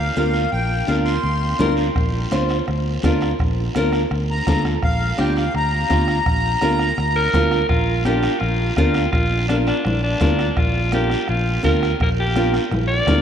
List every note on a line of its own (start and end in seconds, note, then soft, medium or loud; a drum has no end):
0.00 0.15 F5 medium
0.16 0.45 D2 loud
0.16 0.41 D4 medium
0.16 0.42 F4 medium
0.16 0.42 A#4 medium
0.16 0.50 F5 medium
0.16 high conga medium
0.16 short guiro medium
0.34 short guiro medium
0.52 0.81 A#1 medium
0.52 0.89 G5 medium
0.52 high conga soft
0.52 long guiro medium
0.87 1.17 D2 medium
0.87 1.13 D4 medium
0.87 1.13 F4 medium
0.87 1.13 A#4 medium
0.87 0.96 F5 medium
0.87 high conga medium
0.87 short guiro medium
1.05 1.73 C6 medium
1.05 short guiro medium
1.23 1.53 D2 medium
1.23 high conga soft
1.23 long guiro medium
1.59 1.88 D2 medium
1.59 1.85 D4 medium
1.59 1.85 F4 medium
1.59 1.85 A#4 medium
1.59 high conga medium
1.59 low conga medium
1.59 short guiro medium
1.77 short guiro medium
1.96 2.24 A#1 medium
1.96 bombo low medium
1.96 bombo rim medium
1.96 high conga soft
1.96 long guiro medium
2.31 2.60 D2 medium
2.31 2.57 D4 medium
2.31 2.57 F4 medium
2.31 2.57 C5 medium
2.31 bombo rim medium
2.31 high conga medium
2.31 short guiro medium
2.49 bombo rim medium
2.49 short guiro medium
2.66 2.96 D2 loud
2.66 bombo rim medium
2.66 high conga soft
2.66 long guiro medium
3.02 3.32 D2 medium
3.02 3.29 D4 medium
3.02 3.29 F4 medium
3.02 3.29 A#4 loud
3.02 bombo low medium
3.02 bombo rim medium
3.02 high conga medium
3.02 short guiro medium
3.21 bombo rim medium
3.21 short guiro medium
3.39 3.68 A#1 medium
3.39 bombo low medium
3.39 bombo rim medium
3.39 high conga soft
3.39 long guiro medium
3.75 4.04 D2 medium
3.75 4.00 D4 medium
3.75 4.01 F4 medium
3.75 4.01 A#4 medium
3.75 bombo rim medium
3.75 high conga medium
3.75 short guiro medium
3.93 bombo rim medium
3.93 short guiro medium
4.11 4.40 D2 loud
4.11 bombo rim medium
4.11 high conga soft
4.11 long guiro medium
4.31 4.63 A#5 loud
4.47 4.76 D2 medium
4.47 4.72 D4 medium
4.47 4.72 F4 medium
4.47 4.72 A4 medium
4.47 bombo low medium
4.47 bombo rim medium
4.47 high conga medium
4.47 low conga medium
4.47 short guiro medium
4.65 bombo rim medium
4.65 short guiro medium
4.83 5.11 A#1 medium
4.83 5.17 F5 medium
4.83 bombo low medium
4.83 bombo rim medium
4.83 high conga soft
4.83 long guiro medium
5.18 5.48 D2 medium
5.18 5.43 D4 medium
5.18 5.43 F4 medium
5.18 5.43 G4 medium
5.18 5.36 G5 medium
5.18 bombo rim medium
5.18 high conga medium
5.18 short guiro medium
5.37 5.53 F5 medium
5.37 bombo rim medium
5.37 short guiro medium
5.54 5.83 D2 medium
5.54 7.30 A#5 loud
5.54 bombo rim medium
5.54 high conga soft
5.54 long guiro medium
5.89 6.19 D2 medium
5.89 6.15 D4 medium
5.89 6.15 F4 medium
5.89 6.16 G4 medium
5.89 bombo low medium
5.89 bombo rim medium
5.89 high conga medium
5.89 short guiro medium
6.08 bombo rim medium
6.08 short guiro medium
6.26 6.55 A#1 medium
6.26 bombo low medium
6.26 bombo rim medium
6.26 high conga soft
6.26 long guiro medium
6.61 6.91 D2 medium
6.61 6.87 D4 medium
6.61 6.87 F4 medium
6.61 6.87 A#4 medium
6.61 bombo rim medium
6.61 high conga medium
6.61 short guiro medium
6.79 bombo rim medium
6.79 short guiro medium
6.98 7.26 D2 loud
6.98 bombo rim medium
6.98 high conga soft
6.98 long guiro medium
7.16 7.66 A#4 loud
7.33 7.62 D2 medium
7.33 7.59 D4 medium
7.33 7.59 F4 medium
7.33 7.59 A#4 medium
7.33 bombo low medium
7.33 bombo rim medium
7.33 high conga medium
7.33 low conga medium
7.33 short guiro medium
7.51 bombo rim medium
7.51 short guiro medium
7.69 8.27 A#1 loud
7.69 8.03 F4 medium
7.69 bombo low medium
7.69 bombo rim medium
7.69 high conga soft
7.69 long guiro medium
8.05 8.31 D4 medium
8.05 8.31 F4 medium
8.05 8.41 G4 medium
8.05 8.31 A#4 medium
8.05 bombo rim medium
8.05 high conga medium
8.05 short guiro medium
8.23 bombo rim medium
8.23 short guiro medium
8.39 8.70 A#1 medium
8.39 8.76 F4 medium
8.39 bombo rim medium
8.39 high conga soft
8.39 long guiro medium
8.76 9.06 D2 medium
8.76 9.03 D4 medium
8.76 9.10 F4 medium
8.76 9.03 F4 medium
8.76 9.03 A#4 medium
8.76 bombo low medium
8.76 bombo rim medium
8.76 high conga medium
8.76 short guiro medium
8.94 bombo rim medium
8.94 short guiro medium
9.12 9.70 A#1 loud
9.12 9.46 F4 medium
9.12 bombo low medium
9.12 bombo rim medium
9.12 high conga soft
9.12 long guiro medium
9.48 9.56 D4 medium
9.48 9.74 D4 medium
9.48 9.74 F4 medium
9.48 9.75 A#4 medium
9.48 bombo rim medium
9.48 high conga medium
9.48 short guiro medium
9.67 10.00 D4 medium
9.67 bombo rim medium
9.67 short guiro medium
9.85 10.14 A#1 medium
9.85 bombo rim medium
9.85 high conga soft
9.85 low conga medium
9.85 long guiro medium
10.04 10.59 D4 medium
10.20 10.50 D2 medium
10.20 10.46 D4 medium
10.20 10.46 F4 medium
10.20 10.46 A#4 medium
10.20 bombo low medium
10.20 bombo rim medium
10.20 high conga medium
10.20 low conga medium
10.20 short guiro medium
10.39 bombo rim medium
10.39 short guiro medium
10.57 11.14 A#1 loud
10.57 10.93 F4 medium
10.57 bombo low medium
10.57 bombo rim medium
10.57 high conga soft
10.57 long guiro medium
10.92 11.17 D4 medium
10.92 11.17 F4 medium
10.92 11.27 G4 medium
10.92 11.18 A#4 medium
10.92 bombo rim medium
10.92 high conga medium
10.92 short guiro medium
11.10 bombo rim medium
11.10 short guiro medium
11.28 11.57 A#1 loud
11.28 11.62 F4 medium
11.28 bombo rim medium
11.28 high conga soft
11.28 long guiro medium
11.63 11.93 D2 medium
11.63 11.88 D4 medium
11.63 11.89 F4 medium
11.63 11.89 A#4 medium
11.63 11.98 A#4 medium
11.63 bombo low medium
11.63 bombo rim medium
11.63 high conga medium
11.63 short guiro medium
11.83 bombo rim medium
11.83 short guiro medium
12.00 12.57 A#1 loud
12.00 12.10 A#4 medium
12.00 bombo low medium
12.00 bombo rim medium
12.00 high conga soft
12.00 long guiro medium
12.20 12.52 G4 medium
12.36 12.61 D4 medium
12.36 12.61 F4 medium
12.36 12.61 A#4 medium
12.36 bombo rim medium
12.36 high conga medium
12.36 short guiro medium
12.54 bombo rim medium
12.54 short guiro medium
12.71 13.00 A#1 loud
12.71 bombo rim medium
12.71 high conga soft
12.71 low conga medium
12.71 long guiro medium
12.88 13.22 D5 loud
13.07 13.22 D2 medium
13.07 13.22 D4 medium
13.07 13.22 F4 medium
13.07 13.22 A#4 medium
13.07 bombo low medium
13.07 bombo rim medium
13.07 high conga medium
13.07 low conga medium
13.07 short guiro medium